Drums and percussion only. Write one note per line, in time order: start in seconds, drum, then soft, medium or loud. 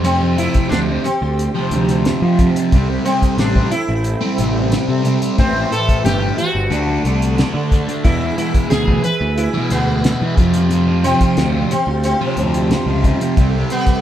0.04 closed hi-hat medium
0.38 closed hi-hat medium
0.54 kick medium
0.54 closed hi-hat medium
0.72 snare loud
0.72 closed hi-hat medium
1.05 closed hi-hat medium
1.39 closed hi-hat medium
1.71 closed hi-hat medium
1.89 snare soft
1.89 closed hi-hat medium
2.05 snare loud
2.05 closed hi-hat medium
2.39 kick medium
2.39 closed hi-hat medium
2.56 closed hi-hat medium
2.72 kick loud
2.72 closed hi-hat medium
3.06 closed hi-hat medium
3.22 kick medium
3.22 closed hi-hat medium
3.38 snare loud
3.38 closed hi-hat medium
3.55 kick medium
3.72 closed hi-hat medium
4.04 closed hi-hat medium
4.38 closed hi-hat medium
4.72 snare medium
4.72 closed hi-hat medium
5.05 closed hi-hat medium
5.22 closed hi-hat medium
5.38 kick loud
5.38 closed hi-hat medium
5.72 closed hi-hat medium
5.89 kick medium
5.89 closed hi-hat medium
6.06 snare loud
6.06 closed hi-hat medium
6.38 closed hi-hat medium
6.72 closed hi-hat medium
7.05 closed hi-hat medium
7.22 closed hi-hat medium
7.38 snare medium
7.38 closed hi-hat medium
7.72 kick medium
7.72 closed hi-hat medium
7.89 closed hi-hat medium
8.05 kick loud
8.05 closed hi-hat medium
8.38 closed hi-hat medium
8.54 kick medium
8.54 closed hi-hat medium
8.71 snare loud
8.71 closed hi-hat medium
8.88 kick medium
9.04 closed hi-hat medium
9.38 closed hi-hat medium
9.70 closed hi-hat medium
10.04 snare loud
10.04 closed hi-hat medium
10.37 kick loud
10.37 closed hi-hat medium
10.54 closed hi-hat medium
10.71 closed hi-hat medium
11.04 closed hi-hat medium
11.21 kick medium
11.21 closed hi-hat medium
11.37 snare loud
11.37 closed hi-hat medium
11.71 closed hi-hat medium
12.04 closed hi-hat medium
12.37 closed hi-hat medium
12.54 closed hi-hat medium
12.71 snare loud
12.71 closed hi-hat medium
13.04 kick medium
13.04 closed hi-hat medium
13.21 closed hi-hat medium
13.37 kick loud
13.37 closed hi-hat medium
13.70 closed hi-hat medium
13.87 kick medium
13.87 closed hi-hat medium